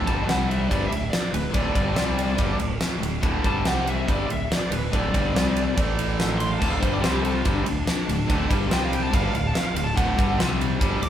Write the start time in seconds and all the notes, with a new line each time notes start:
0.06 G1 G2 D3 G3 A5, kick, ride
0.27 C2 C3 G3 C4 F#5, snare, ride
0.49 E5, ride
0.69 G1 G2 D3 G3 D5, kick, ride
0.88 D1 D2 A2 E5
0.92 ride
1.11 D5, snare, ride
1.30 D1 D2 A2 B4, ride
1.50 D1 D2 A2 D3 D5, ride
1.54 D2 A2 D3, kick
1.72 G1 G2 D3 G3, kick, ride
1.76 G2
1.93 C2 C3 G3 C4, snare, ride
2.19 ride
2.34 G2 D3 G3
2.38 G1 G2 D3 G3, kick, ride
2.56 D1 D2 A2, ride
2.61 D2 A2
2.81 snare, ride
2.98 D1 D2 A2
3.03 ride
3.21 D1 D2 A2 D3, kick, ride
3.43 G1 G2 D3 G3 A5, kick, ride
3.63 C2 C3 G3 C4, snare, ride
3.68 F#5
3.87 E5, ride
4.06 G1 G2 D3 G3, kick, ride
4.11 D5
4.27 D1 D2 A2, ride
4.32 E5
4.52 D5, snare, ride
4.70 D1 D2 A2 B4, ride
4.91 D1 D2 A2 D3, kick, ride
4.96 D5
5.12 G1 G2 D3 G3, kick, ride
5.33 C2 C3 G3 C4, snare, ride
5.57 ride
5.75 A1 A2 E3 A3, kick, ride
5.99 ride
6.20 snare, ride
6.38 C6, ride
6.51 F5
6.59 D1 D2 A2 D3 A5, kick, crash
6.70 F5
6.79 G1 G2 D3 G3 C5, kick, ride
6.93 D5
7.00 C3 G3 C4 C5, snare, ride
7.05 C2
7.11 G4
7.22 A4, ride
7.34 F4
7.42 G1 G2 D3 G3, kick, ride
7.55 D4
7.64 D1 D2 A2 D4, ride
7.87 snare, ride
8.07 D1 D2 A2, ride
8.26 D1 D2 A2 D3, kick, ride
8.31 D2 A2
8.48 G1 G2 D3 G3, kick, ride
8.67 C3 G3 C4
8.71 C2 C3 G3 C4 G5, snare, ride
8.85 F5
8.93 G5, ride
9.03 A5
9.10 G1 G2 D3 G3, kick, ride
9.15 D3 G3 F5
9.23 F5
9.32 D1 D2 A2 F5, ride
9.36 D2 A2
9.47 A5
9.53 F5, snare, ride
9.65 F5
9.74 D1 D2 A2 F5, ride
9.84 A5
9.95 D1 D2 A2 D3 F#5, kick, ride
10.16 G1 G2 D3 G3, kick, ride
10.38 C2 C3 G3 C4, snare, ride
10.61 ride
10.79 G1 G2 D3 G3, kick, ride
11.00 D1 D2 A2 D6, ride